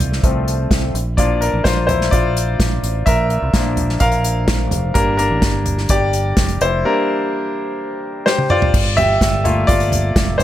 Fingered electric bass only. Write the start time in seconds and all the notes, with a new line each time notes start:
Already playing: C2
0.23 C2
0.71 C2
0.94 A#1
1.54 A1
1.65 A#1
2.13 A#1
2.60 A#1
2.83 A1
3.07 A#1
3.42 C2
3.54 A#1
4.01 A#1
4.48 A#1
4.72 F1
4.95 G1
5.31 A1
5.42 G1
5.90 G1
6.37 F1
6.61 F1
8.74 G1
9.21 G1
9.69 G1
10.16 F1
10.40 G1